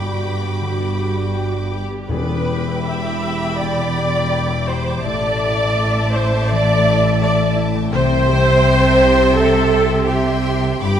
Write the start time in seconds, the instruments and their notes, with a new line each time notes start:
Already playing: double bass section G1, cello section G2, harp G2 G3 B3 G4 G5, viola section F#4, violin section G5 B5 D6
0.04 harp D5
0.23 harp G4
0.41 harp B3
0.60 harp D3
0.80 harp B3
0.98 harp G4
1.16 harp D5
1.33 harp G5
1.52 harp D5
1.71 harp G4, viola section G4
1.90 harp B3
2.08 double bass section E1, timpani E2, cello section E2, harp E2, viola section B4, violin section G5 B5 D6
2.29 harp B3
2.49 harp G4
2.68 harp E5
2.86 viola section E5, harp G5
3.06 harp E5
3.24 harp G4
3.43 harp B3
3.59 harp B2, viola section D5
3.78 harp B3
3.97 harp G4
4.15 harp E5
4.33 harp G5
4.50 harp E5
4.68 harp G4, viola section C5
4.87 harp B3
5.03 double bass section A1, cello section A2, harp A2, viola section D5, violin section E5 A5
5.24 harp A3
5.42 harp E4
5.60 harp E5
5.79 harp A4
5.96 harp E5
6.13 harp E4, viola section C5
6.32 harp A3
6.50 harp E3, viola section D5
6.68 harp A3
6.85 harp E4
7.03 harp E5
7.21 harp A4, viola section D5
7.38 harp E5
7.56 harp E4
7.74 harp A3
7.91 double bass section C2, cello section C3, harp C3, viola section C5, violin section E5 G5 C6
8.11 harp C4
8.28 harp G4
8.47 harp E5
8.64 harp G5
8.83 harp E5
9.01 harp G4
9.18 harp C4
9.36 harp G3, viola section A4
9.53 harp C4
9.72 harp G4
9.89 harp E5
10.07 viola section G4, violin section E5 G5 C6, harp G5
10.25 harp E5
10.44 harp G4
10.62 harp C4
10.81 double bass section G1, harp G2, cello section G2, viola section G4, violin section G5 B5 D6